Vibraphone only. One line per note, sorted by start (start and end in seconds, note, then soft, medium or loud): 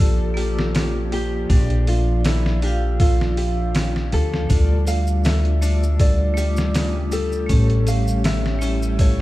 0.00 0.37 F4 medium
0.00 0.39 G4 medium
0.00 1.51 D5 medium
0.34 1.44 A#3 medium
0.34 1.45 F4 medium
0.39 1.47 G4 medium
0.39 1.48 D6 medium
1.49 2.59 F3 medium
1.49 2.58 D4 medium
1.54 2.60 D5 loud
2.64 4.47 F4 medium
2.64 4.48 F5 loud
4.47 5.57 A3 medium
4.47 5.58 D4 medium
4.52 5.59 F4 medium
4.52 5.60 D5 medium
5.61 6.33 A3 medium
5.61 6.33 D4 medium
5.61 6.34 F4 medium
5.61 6.34 D5 medium
6.34 7.44 A3 medium
6.39 7.46 F4 medium
6.39 7.48 D6 medium
7.47 8.57 A3 medium
7.47 8.58 C#4 medium
7.52 8.59 G4 medium
7.52 8.60 C#5 loud
8.59 9.21 A3 loud
8.59 9.21 E4 medium
8.64 9.21 G4 medium
8.64 9.21 E5 loud